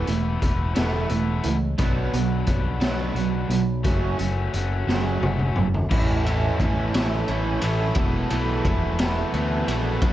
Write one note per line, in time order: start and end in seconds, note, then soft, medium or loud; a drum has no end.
0.07 0.37 E1 medium
0.07 0.39 E3 medium
0.07 0.39 A3 medium
0.07 0.40 B3 medium
0.07 0.41 E4 medium
0.07 closed hi-hat medium
0.40 0.71 E1 medium
0.40 0.74 E3 medium
0.40 0.74 A3 medium
0.40 0.73 B3 medium
0.40 0.73 E4 medium
0.40 kick medium
0.40 closed hi-hat medium
0.74 1.06 E1 medium
0.74 1.08 E3 medium
0.74 1.09 A3 medium
0.74 1.09 B3 medium
0.74 1.10 E4 loud
0.74 snare loud
0.74 closed hi-hat medium
1.09 1.39 E1 medium
1.09 1.55 E3 medium
1.09 1.55 A3 medium
1.09 1.56 B3 medium
1.09 1.56 E4 medium
1.09 closed hi-hat medium
1.43 1.74 C#2 medium
1.43 1.76 E3 medium
1.43 1.76 A3 medium
1.43 closed hi-hat medium
1.78 2.08 B1 medium
1.78 2.11 B2 medium
1.78 2.12 F#3 medium
1.78 2.12 B3 medium
1.78 2.12 D4 medium
1.78 5.87 F#4 medium
1.78 2.12 F#4 medium
1.78 5.87 C#5 medium
1.78 3.84 D5 medium
1.78 3.83 B5 medium
1.78 kick loud
1.78 closed hi-hat medium
2.13 2.43 B1 medium
2.13 2.45 B2 medium
2.13 2.45 F#3 medium
2.13 2.46 B3 medium
2.13 2.46 D4 medium
2.13 2.45 F#4 medium
2.13 closed hi-hat medium
2.47 2.77 B1 medium
2.47 2.80 F#3 medium
2.47 2.79 B3 medium
2.47 2.79 D4 medium
2.47 2.79 F#4 medium
2.47 kick medium
2.47 closed hi-hat medium
2.80 3.10 B1 medium
2.80 3.14 B2 medium
2.80 3.13 F#3 medium
2.80 3.14 B3 medium
2.80 3.14 D4 medium
2.80 3.14 F#4 medium
2.80 snare loud
2.80 closed hi-hat medium
3.14 3.44 B1 medium
3.14 3.48 B2 medium
3.14 3.60 F#3 medium
3.14 3.61 B3 medium
3.14 3.61 D4 medium
3.14 3.61 F#4 medium
3.14 closed hi-hat medium
3.49 3.86 B1 medium
3.49 3.82 B2 medium
3.49 3.82 F#3 medium
3.49 closed hi-hat medium
3.83 4.14 F#1 medium
3.83 4.17 F#2 medium
3.83 4.18 C#3 medium
3.83 4.18 F#3 medium
3.83 4.18 A3 medium
3.83 4.17 C#4 medium
3.83 4.17 F#4 medium
3.83 5.89 A4 medium
3.83 5.89 G#5 medium
3.83 kick loud
3.83 closed hi-hat medium
4.18 4.48 F#1 medium
4.18 4.51 F#2 medium
4.18 4.51 C#3 medium
4.18 4.51 F#3 medium
4.18 4.52 A3 medium
4.18 4.52 C#4 medium
4.18 4.53 F#4 medium
4.18 closed hi-hat medium
4.53 4.83 F#1 medium
4.53 4.87 F#3 medium
4.53 4.87 A3 medium
4.53 4.87 C#4 medium
4.53 4.86 F#4 medium
4.53 closed hi-hat medium
4.87 5.17 F#1 medium
4.87 5.21 F#2 medium
4.87 5.21 C#3 medium
4.87 5.19 F#3 medium
4.87 5.20 A3 medium
4.87 5.20 C#4 medium
4.87 5.21 F#4 loud
4.87 snare medium
5.20 5.51 F#1 medium
5.20 5.53 F#2 medium
5.20 5.54 C#3 medium
5.20 5.66 F#3 medium
5.20 5.67 A3 medium
5.20 5.67 C#4 medium
5.20 5.67 F#4 medium
5.20 high tom medium
5.39 mid tom medium
5.56 5.86 F#1 medium
5.56 5.88 F#2 medium
5.56 5.89 C#3 medium
5.56 mid tom medium
5.74 floor tom medium
5.89 6.49 A1 medium
5.89 6.23 A2 medium
5.89 6.25 E3 medium
5.89 6.25 A3 medium
5.89 6.25 C#4 loud
5.89 9.97 E4 medium
5.89 6.25 E4 loud
5.89 9.97 B4 medium
5.89 7.94 C#5 medium
5.89 9.97 A5 medium
5.89 kick loud
5.89 crash loud
6.24 6.57 A2 medium
6.24 6.58 E3 medium
6.24 6.59 A3 medium
6.24 6.58 C#4 medium
6.24 6.59 E4 loud
6.24 ride medium
6.59 6.89 A1 medium
6.59 6.92 A2 medium
6.59 6.93 E3 medium
6.59 6.94 A3 medium
6.59 6.94 C#4 medium
6.59 6.94 E4 medium
6.59 kick medium
6.59 ride medium
6.93 7.23 A1 medium
6.93 7.28 A2 medium
6.93 7.28 E3 medium
6.93 7.29 A3 medium
6.93 7.29 C#4 medium
6.93 7.29 E4 medium
6.93 snare loud
6.93 ride loud
7.28 7.58 A1 medium
7.28 7.61 A2 medium
7.28 7.61 E3 medium
7.28 7.62 A3 medium
7.28 7.62 C#4 medium
7.28 7.62 E4 medium
7.28 ride medium
7.61 7.91 A1 medium
7.61 7.95 A2 medium
7.61 7.95 E3 medium
7.61 7.95 A3 medium
7.61 7.95 C#4 loud
7.61 7.95 E4 loud
7.61 ride medium
7.95 8.26 E1 loud
7.95 8.29 E2 medium
7.95 8.29 B2 medium
7.95 8.30 E3 medium
7.95 8.30 A3 medium
7.95 8.31 B3 loud
7.95 8.30 E4 loud
7.95 9.99 A4 medium
7.95 kick loud
7.95 ride medium
8.30 8.60 B1 medium
8.30 8.64 E2 medium
8.30 8.65 B2 medium
8.30 8.65 E3 medium
8.30 8.65 A3 medium
8.30 8.66 B3 medium
8.30 8.66 E4 medium
8.30 ride medium
8.65 9.23 E1 medium
8.65 8.98 E2 medium
8.65 8.98 B2 medium
8.65 8.98 E3 medium
8.65 8.99 A3 medium
8.65 9.00 B3 medium
8.65 8.99 E4 medium
8.65 kick medium
8.65 ride medium
8.99 9.31 E2 medium
8.99 9.32 B2 medium
8.99 9.32 E3 medium
8.99 9.33 A3 medium
8.99 9.33 B3 loud
8.99 9.33 E4 loud
8.99 snare loud
8.99 ride medium
9.32 9.62 D2 medium
9.32 9.66 E2 medium
9.32 9.67 B2 medium
9.32 9.66 E3 medium
9.32 9.67 A3 medium
9.32 9.67 B3 medium
9.32 9.68 E4 medium
9.32 ride medium
9.67 9.97 A#1 medium
9.67 9.99 E2 medium
9.67 10.00 B2 medium
9.67 10.00 E3 medium
9.67 10.00 A3 loud
9.67 10.00 B3 loud
9.67 10.00 E4 loud
9.67 ride medium
10.00 10.13 B1 loud
10.00 10.13 B2 medium
10.00 10.13 F#3 medium
10.00 10.13 B3 medium
10.00 10.13 D4 loud
10.00 10.13 F#4 medium
10.00 10.13 F#4 loud
10.00 10.13 C#5 medium
10.00 10.13 D5 medium
10.00 10.13 B5 medium
10.00 kick loud
10.00 ride medium